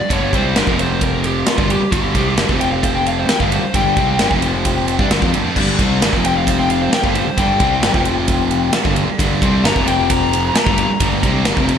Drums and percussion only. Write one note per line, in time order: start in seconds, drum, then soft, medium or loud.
0.10 kick loud
0.10 ride medium
0.33 kick medium
0.33 ride medium
0.56 snare loud
0.56 ride medium
0.67 kick loud
0.79 ride medium
1.01 kick loud
1.01 ride medium
1.24 ride medium
1.46 snare loud
1.46 ride medium
1.58 kick loud
1.70 ride medium
1.92 kick loud
1.92 ride loud
2.15 kick medium
2.15 ride medium
2.38 snare loud
2.38 ride loud
2.49 kick loud
2.61 ride medium
2.83 kick loud
2.83 ride medium
3.06 ride medium
3.29 snare loud
3.29 ride medium
3.40 kick loud
3.52 ride medium
3.74 kick loud
3.74 ride medium
3.97 kick loud
3.97 ride medium
4.19 snare loud
4.19 ride medium
4.31 kick loud
4.42 ride medium
4.65 kick medium
4.65 ride medium
4.88 ride medium
4.99 kick loud
5.11 snare loud
5.11 ride medium
5.22 kick loud
5.34 ride medium
5.56 kick medium
5.56 crash loud
5.79 kick loud
5.79 ride medium
6.02 snare loud
6.02 ride loud
6.13 kick medium
6.25 ride medium
6.47 kick loud
6.47 ride loud
6.70 ride medium
6.93 snare loud
6.93 ride loud
7.04 kick loud
7.15 ride medium
7.38 kick loud
7.38 ride medium
7.60 kick loud
7.60 ride medium
7.83 snare loud
7.83 ride medium
7.94 kick loud
8.05 ride medium
8.28 kick loud
8.28 ride medium
8.51 ride medium
8.73 snare loud
8.73 ride loud
8.85 kick loud
8.96 ride medium
9.19 kick loud
9.19 ride loud
9.42 kick loud
9.42 ride medium
9.65 snare loud
9.65 ride loud
9.76 kick loud
9.88 ride medium
10.10 kick loud
10.10 ride loud
10.33 ride medium
10.55 snare loud
10.55 ride loud
10.67 kick loud
10.78 ride medium
11.00 kick loud
11.00 ride loud
11.23 kick medium
11.23 ride medium
11.45 snare loud
11.45 ride loud
11.57 kick loud
11.69 ride medium